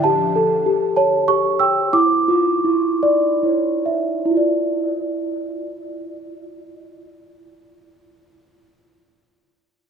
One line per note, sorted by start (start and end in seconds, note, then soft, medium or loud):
0.04 0.65 G4 medium
0.04 0.95 A5 medium
0.36 1.61 A4 medium
0.66 1.27 G4 medium
0.96 1.94 C#5 medium
0.96 1.29 A5 medium
1.28 1.94 G4 medium
1.28 1.62 C#6 medium
1.59 1.94 G5 medium
1.59 1.94 E6 medium
1.93 2.63 E4 medium
1.93 3.39 D6 medium
2.28 3.86 F4 medium
2.65 3.42 E4 medium
3.03 4.32 D5 medium
3.43 4.24 E4 soft
3.86 4.32 E5 medium
4.26 9.05 E4 medium
4.31 9.11 F4 soft
4.37 9.17 D5 medium